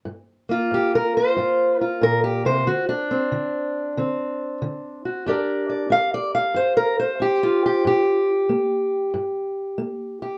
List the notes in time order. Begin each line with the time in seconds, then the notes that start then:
0.05 G2
0.49 A#3 F4
0.71 G2 G4
0.95 A#4
1.17 C5
1.37 G2 F4
1.81 F4 A#4
2.01 A#2 A#4
2.24 G4
2.45 C3 C5
2.67 D3 F#4
2.89 D4
3.11 C4
3.32 D3
3.97 D3 C4
4.62 D3
5.05 F#4
5.26 G2 D4 G4 A#4 D5
5.70 D5
5.90 D4 F5
6.14 D5
6.35 F5
6.54 G2 C5
6.77 A#4
6.99 C5
7.20 D4 G4
7.43 F4
7.66 G4
7.85 G2 G4
8.49 A#3
9.14 G2
9.78 A#3
10.22 G4